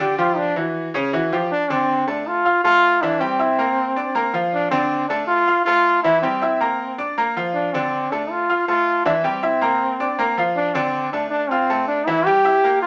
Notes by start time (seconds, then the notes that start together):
0.00 D3 D4 G4 D5
0.18 F3 F4 G4
0.37 D4
0.56 E3 E4 F#4
0.94 C#3 C#4 C#5
1.13 E3 E4 F#4
1.32 F3 F4 G4
1.52 D4
1.70 D3 C4 D4 D5
2.07 A3 D4 A4 A5
2.27 F4
2.45 F4 F5 F6
2.64 A3 F4 A4 A5
3.02 E3 D4 E4 E5
3.20 G3 C4 G4 G5
3.39 E4 E5 E6
3.58 A#3 A#4 A#5
3.96 D4 D5 D6
4.15 A#3 A#4 A#5
4.33 F3 F4 F5
4.53 D4
4.71 D3 C4 D4 D5
5.09 A3 D4 A4 A5
5.27 F4
5.47 F4 F5 F6
5.65 A3 F4 A4 A5
6.03 E3 E4 E5
6.22 G3 C4 G4 G5
6.42 E4 E5 E6
6.60 A#3 A#4 A#5
6.98 D4 D5 D6
7.18 A#3 A#4 A#5
7.37 F3 F4 F5
7.54 D4
7.73 D3 C4 D4 D5
8.11 A3 D4 A4 A5
8.31 F4
8.50 F4 F5 F6
8.68 A3 F4 A4 A5
9.05 E3 D4 E4 E5
9.24 G3 C4 G4 G5
9.43 E4 E5 E6
9.62 A#3 A#4 A#5
10.00 D4 D5 D6
10.19 A#3 A#4 A#5
10.37 F3 F4 F5
10.56 D4
10.75 D3 C4 D4 D5
11.13 A3 D4 A4 A5
11.31 D4
11.50 C4 F4 F5 F6
11.70 A3 A4 A5
11.88 D4
12.07 E3 E4 E5
12.25 G3 G4 G5
12.45 E4 E5 E6
12.64 A#3 A#4 A#5
12.82 F4